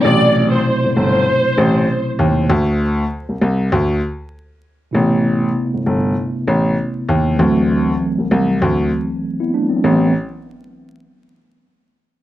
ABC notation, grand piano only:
X:1
M:4/4
L:1/16
Q:"Swing 16ths" 1/4=98
K:Ador
V:1 name="Grand piano" clef=bass
A,,,4 z G,,, G,,,2 z2 A,,,2 z2 ^D,,2 | D,,4 z C,, C,,2 D,,2 z6 | A,,,4 z G,,, G,,,2 z2 A,,,2 z2 ^D,,2 | D,,4 z C,, C,,2 D,,2 z6 |
A,,,2 z12 z2 |]